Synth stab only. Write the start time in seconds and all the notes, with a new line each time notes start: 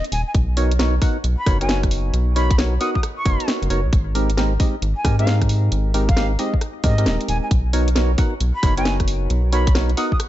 0.57 B3 D#4 F#4 A#4 C#5
0.79 B3 D#4 F#4 A#4 C#5
1.02 B3 D#4 F#4 A#4 F#5
1.46 B3 D#4 F#4 A#4 C#5
1.61 B3 D#4 F#4 A#4 C#5
2.36 B3 D#4 F#4 A#4 C#5
2.58 B3 D#4 F#4 A#4 C#5
2.81 B3 D#4 F#4 A#4 F#5
3.25 B3 D#4 F#4 A#4 C#5
3.70 B3 D#4 F#4 A#4 C#5
4.15 G#3 C4 D#4 G4 A#4
4.37 G#3 C4 D#4 G4 A#4
4.60 G#3 C4 D#4 G4 D#5
5.05 G#3 C4 D#4 G4 A#4
5.19 G#3 C4 D#4 G4 A#4
5.94 G#3 C4 D#4 G4 A#4
6.17 G#3 C4 D#4 G4 A#4
6.39 G#3 C4 D#4 G4 D#5
6.84 G#3 C4 D#4 G4 A#4
6.98 G#3 C4 D#4 G4 A#4
7.73 B3 D#4 F#4 A#4 C#5
7.96 B3 D#4 F#4 A#4 C#5
8.18 B3 D#4 F#4 A#4 F#5
8.63 B3 D#4 F#4 A#4 C#5
8.78 B3 D#4 F#4 A#4 C#5
9.53 B3 D#4 F#4 A#4 C#5
9.75 B3 D#4 F#4 A#4 C#5
9.97 B3 D#4 F#4 A#4 F#5